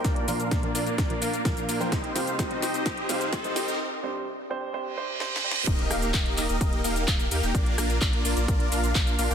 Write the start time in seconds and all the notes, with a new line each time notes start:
Already playing: riser
0.05 A#3 D4 F4 A#4 D5, kick, snare, closed hi-hat, shaker
0.16 closed hi-hat
0.27 A#2 F3 A#3 D4 F4 A#4 F5, open hi-hat, shaker
0.40 closed hi-hat, shaker
0.51 A#3 D4 F4 A#4 D5, kick, snare, closed hi-hat, shaker
0.63 A#2 F3 A#3 D4 A#4, closed hi-hat
0.75 A#3 D4 F4 A#4 D5, open hi-hat, shaker
0.87 A#3 D4 F4 A#4 D5, closed hi-hat, shaker
0.98 A#3 D4 F4 A#4 D5, kick, snare, closed hi-hat, shaker
1.09 A#2 F3 A#3 D4 A#4, closed hi-hat
1.22 A#3 D4 F4 A#4 F5, open hi-hat, shaker
1.33 closed hi-hat, shaker
1.45 A#2 F3 A#3 D4 F4 A#4 F5, kick, snare, closed hi-hat, shaker
1.57 closed hi-hat, shaker
1.69 A#3 D4 F4 A#4 F5, open hi-hat, shaker
1.80 F3 A#3 D4 F4 A#4 C5 G5, shaker
1.92 C4 D#4 G4 C5 D#5, kick, snare, closed hi-hat, shaker
2.04 closed hi-hat
2.15 C3 G3 C4 D#4 G4 C5 F5, snare, open hi-hat, shaker
2.27 closed hi-hat, shaker
2.39 C4 D#4 G4 C5 D#5, kick, snare, closed hi-hat, shaker
2.50 C3 G3 C4 D#4 C5, closed hi-hat
2.62 C4 D#4 G4 C5 D#5, snare, open hi-hat, shaker
2.74 C4 D#4 G4 C5 D#5, closed hi-hat, shaker
2.86 C4 D#4 G4 C5 D#5, kick, snare, closed hi-hat, shaker
2.98 closed hi-hat
3.09 C3 G3 C4 D#4 G4 C5 F5, snare, open hi-hat, shaker
3.21 closed hi-hat, shaker
3.33 C4 D#4 G4 C5 D#5, kick, snare, closed hi-hat, shaker
3.44 C3 G3 C4 D#4 C5, closed hi-hat, shaker
3.56 C4 D#4 G4 C5 D#5, snare, open hi-hat, shaker
3.68 C4 D#4 G4 C5 D#5, shaker
4.02 C3 G3 C4 D4 C5
4.50 C3 G3 C4 D4 C5
4.73 C3 G3 C4 D4 C5, reverse cymbal
4.96 C3 G3 C4 D4 C5
5.20 C3 G3 C4 D4 C5, snare
5.36 snare
5.43 C3 G3 C4 D4 C5
5.51 snare
5.67 D#1 A#3 D#4 G4 A#4 D#5, kick, closed hi-hat, crash, impact, shaker
5.79 closed hi-hat
5.91 D#1 A#3 D#4 G4 A#4 F5, cross-stick, open hi-hat, shaker
6.02 closed hi-hat, shaker
6.14 D#1 A#3 D#4 G4 A#4 D#5, kick, clap, closed hi-hat, shaker
6.26 closed hi-hat
6.37 D#1 A#3 D#4 G4 A#4 D#5, clap, open hi-hat, shaker
6.49 D#1 A#3 D#4 G4 A#4 D#5, closed hi-hat, shaker
6.61 D#1 A#3 D#4 G4 A#4 D#5, kick, closed hi-hat, shaker
6.73 closed hi-hat
6.84 D#1 A#3 D#4 G4 A#4 F5, open hi-hat, shaker
6.96 closed hi-hat, shaker
7.08 D#1 A#3 D#4 G4 A#4 F5, kick, clap, closed hi-hat, shaker
7.20 closed hi-hat, shaker
7.31 D#2 A#3 D#4 G4 A#4 F5, open hi-hat, shaker
7.43 D#1 A#3 D#4 G4 A#4 G5, shaker
7.54 A#1 A#3 D4 F4 A#4 D5, kick, closed hi-hat, shaker
7.66 closed hi-hat
7.78 A#1 A#3 D4 F4 A#4 F5, cross-stick, open hi-hat, shaker
7.90 closed hi-hat, shaker
8.01 A#1 A#3 D4 F4 A#4 D5, kick, clap, closed hi-hat, shaker
8.13 closed hi-hat
8.25 A#1 A#3 D4 F4 A#4 D5, open hi-hat, shaker
8.37 A#1 A#3 D4 F4 A#4 D5, closed hi-hat, shaker
8.48 A#1 A#3 D4 F4 A#4 D5, kick, closed hi-hat, shaker
8.60 closed hi-hat
8.72 A#1 A#3 D4 F4 A#4 F5, open hi-hat, shaker
8.84 closed hi-hat, shaker
8.95 A#1 A#3 D4 F4 A#4 F5, kick, clap, closed hi-hat, shaker
9.07 closed hi-hat, shaker
9.19 A#1 A#3 D4 F4 A#4 F5, open hi-hat, shaker
9.30 A#1 A#3 D4 F4 A#4 G5, shaker